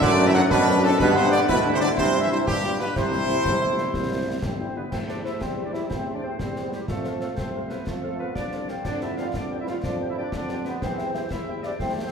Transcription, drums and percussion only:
0.01 concert bass drum, snare
0.51 concert bass drum, snare
0.67 snare
0.83 snare
1.00 concert bass drum, snare, crash
1.17 snare
1.33 snare
1.49 concert bass drum, snare
1.81 snare
1.98 concert bass drum, snare
2.47 concert bass drum, snare
2.64 snare
2.80 snare
2.96 concert bass drum, snare, crash
3.13 snare
3.29 snare
3.45 concert bass drum, snare
3.78 snare
3.94 concert bass drum, snare
4.42 concert bass drum, snare
4.92 concert bass drum, snare, crash
5.09 snare
5.26 snare
5.41 concert bass drum, snare
5.74 snare
5.91 concert bass drum, snare
6.39 concert bass drum, snare
6.56 snare
6.73 snare
6.88 concert bass drum, snare
7.04 snare
7.21 snare
7.38 concert bass drum, snare
7.70 snare
7.87 concert bass drum, snare
8.35 concert bass drum, snare
8.52 snare
8.68 snare
8.85 concert bass drum, snare, crash
9.01 snare
9.18 snare
9.34 concert bass drum, snare
9.67 snare
9.83 concert bass drum, snare
10.32 concert bass drum, snare
10.49 snare
10.65 snare
10.82 concert bass drum, snare
10.99 snare
11.14 snare
11.31 concert bass drum, snare
11.63 snare
11.80 concert bass drum, snare

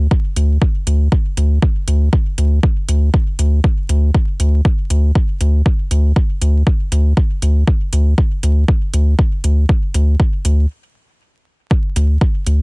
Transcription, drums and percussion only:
0.11 kick
0.36 closed hi-hat
0.62 kick
0.87 closed hi-hat
1.12 kick
1.37 closed hi-hat
1.62 kick
1.88 closed hi-hat
2.13 kick
2.38 closed hi-hat
2.63 kick
2.88 closed hi-hat
3.14 kick
3.39 closed hi-hat
3.64 kick
3.89 closed hi-hat
4.14 kick
4.40 closed hi-hat
4.65 kick
4.90 closed hi-hat
5.15 kick
5.41 closed hi-hat
5.66 kick
5.91 closed hi-hat
6.16 kick
6.41 closed hi-hat
6.67 kick
6.92 closed hi-hat
7.17 kick
7.42 closed hi-hat
7.67 kick
7.93 closed hi-hat
8.18 kick
8.43 closed hi-hat
8.68 kick
8.94 closed hi-hat
9.19 kick
9.44 closed hi-hat
9.69 kick
9.94 closed hi-hat
10.20 kick
10.45 closed hi-hat
11.71 kick
11.96 closed hi-hat
12.21 kick
12.47 closed hi-hat

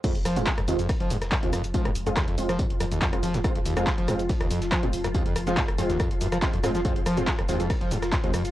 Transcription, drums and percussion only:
0.04 kick, closed hi-hat, crash, tambourine, shaker
0.15 closed hi-hat
0.25 cross-stick, open hi-hat, tambourine, shaker
0.36 closed hi-hat, shaker
0.46 kick, snare, clap, closed hi-hat, tambourine, shaker
0.58 cross-stick, closed hi-hat
0.68 open hi-hat, tambourine, shaker
0.79 closed hi-hat, shaker
0.89 kick, cross-stick, closed hi-hat, open hi-hat, shaker
1.00 closed hi-hat
1.10 open hi-hat, tambourine, shaker
1.21 cross-stick, snare, closed hi-hat, shaker
1.32 kick, snare, clap, closed hi-hat, tambourine, shaker
1.43 closed hi-hat
1.53 cross-stick, open hi-hat, tambourine, shaker
1.64 closed hi-hat, shaker
1.74 kick, closed hi-hat, tambourine, shaker
1.85 cross-stick, closed hi-hat
1.95 open hi-hat, tambourine, shaker
2.07 closed hi-hat, shaker
2.17 kick, cross-stick, snare, clap, closed hi-hat, tambourine, shaker
2.28 closed hi-hat
2.38 open hi-hat, tambourine, shaker
2.49 cross-stick, snare, closed hi-hat, shaker
2.59 kick, closed hi-hat, tambourine, shaker
2.70 closed hi-hat
2.81 cross-stick, open hi-hat, tambourine, shaker
2.92 closed hi-hat, shaker
3.02 kick, snare, clap, closed hi-hat, tambourine, shaker
3.13 cross-stick, closed hi-hat
3.23 open hi-hat, tambourine, shaker
3.34 snare, closed hi-hat, shaker
3.44 kick, cross-stick, closed hi-hat, tambourine, shaker
3.56 closed hi-hat
3.66 open hi-hat, tambourine, shaker
3.77 cross-stick, closed hi-hat, shaker
3.87 kick, snare, clap, closed hi-hat, tambourine, shaker
3.98 closed hi-hat
4.08 cross-stick, open hi-hat, tambourine, shaker
4.19 closed hi-hat, shaker
4.29 kick, closed hi-hat, open hi-hat, shaker
4.41 cross-stick, closed hi-hat
4.51 open hi-hat, tambourine, shaker
4.62 snare, closed hi-hat, shaker
4.72 kick, cross-stick, snare, clap, closed hi-hat, tambourine, shaker
4.83 closed hi-hat
4.93 open hi-hat, tambourine, shaker
5.04 cross-stick, closed hi-hat, shaker
5.15 kick, closed hi-hat, tambourine, shaker
5.26 closed hi-hat
5.36 cross-stick, open hi-hat, tambourine, shaker
5.47 closed hi-hat, shaker
5.57 kick, snare, clap, closed hi-hat, tambourine, shaker
5.68 cross-stick, closed hi-hat
5.78 open hi-hat, tambourine, shaker
5.90 snare, closed hi-hat, shaker
6.00 kick, cross-stick, closed hi-hat, tambourine, shaker
6.11 closed hi-hat
6.21 open hi-hat, tambourine, shaker
6.32 cross-stick, closed hi-hat, shaker
6.42 kick, snare, clap, closed hi-hat, tambourine, shaker
6.53 closed hi-hat
6.64 cross-stick, open hi-hat, tambourine, shaker
6.75 snare, closed hi-hat, shaker
6.85 kick, closed hi-hat, tambourine, shaker
6.96 closed hi-hat
7.06 cross-stick, open hi-hat, tambourine, shaker
7.17 closed hi-hat, shaker
7.27 kick, snare, clap, closed hi-hat, tambourine, shaker
7.39 cross-stick, closed hi-hat
7.49 open hi-hat, tambourine, shaker
7.60 closed hi-hat, shaker
7.70 kick, cross-stick, closed hi-hat, open hi-hat, shaker
7.81 closed hi-hat
7.91 open hi-hat, tambourine, shaker
8.02 cross-stick, snare, closed hi-hat, shaker
8.12 kick, snare, clap, closed hi-hat, tambourine, shaker
8.24 closed hi-hat
8.34 cross-stick, open hi-hat, tambourine, shaker
8.45 closed hi-hat, shaker

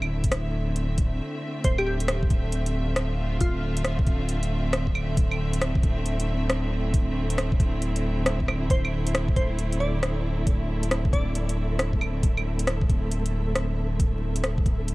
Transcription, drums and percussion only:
0.02 claves
0.24 kick, closed hi-hat
0.32 cross-stick, closed hi-hat
0.76 closed hi-hat
0.98 kick, closed hi-hat
1.64 kick, closed hi-hat
1.78 claves
2.00 closed hi-hat
2.08 cross-stick, closed hi-hat
2.23 kick
2.30 kick, closed hi-hat
2.52 closed hi-hat
2.66 closed hi-hat
2.96 cross-stick, closed hi-hat
3.40 kick, closed hi-hat
3.77 closed hi-hat
3.84 cross-stick, closed hi-hat
3.99 kick
4.07 kick, closed hi-hat
4.29 closed hi-hat
4.43 closed hi-hat
4.73 cross-stick, closed hi-hat
4.87 kick
4.95 claves
5.17 kick, closed hi-hat
5.31 claves
5.53 closed hi-hat
5.61 cross-stick, closed hi-hat
5.75 kick
5.83 kick, closed hi-hat
6.06 closed hi-hat
6.20 closed hi-hat
6.50 cross-stick, closed hi-hat
6.94 kick, closed hi-hat
7.30 closed hi-hat
7.38 cross-stick, closed hi-hat
7.52 kick
7.60 kick, closed hi-hat
7.82 closed hi-hat
7.96 closed hi-hat
8.26 cross-stick, closed hi-hat
8.40 kick
8.48 cross-stick, claves
8.70 kick, closed hi-hat
8.85 claves
9.07 closed hi-hat
9.15 cross-stick, closed hi-hat
9.28 kick
9.36 kick, closed hi-hat
9.59 closed hi-hat
9.73 closed hi-hat
10.03 cross-stick, closed hi-hat
10.47 kick, closed hi-hat
10.83 closed hi-hat
10.91 cross-stick, closed hi-hat
11.05 kick
11.13 kick, closed hi-hat
11.35 closed hi-hat
11.49 closed hi-hat
11.79 cross-stick, closed hi-hat
11.93 kick
12.01 claves
12.23 kick, closed hi-hat
12.37 claves
12.59 closed hi-hat
12.67 cross-stick, closed hi-hat
12.81 kick
12.89 kick, closed hi-hat
13.11 closed hi-hat
13.26 closed hi-hat
13.55 cross-stick, closed hi-hat
14.00 kick, closed hi-hat
14.36 closed hi-hat
14.44 cross-stick, closed hi-hat
14.58 kick
14.66 kick, closed hi-hat
14.88 closed hi-hat

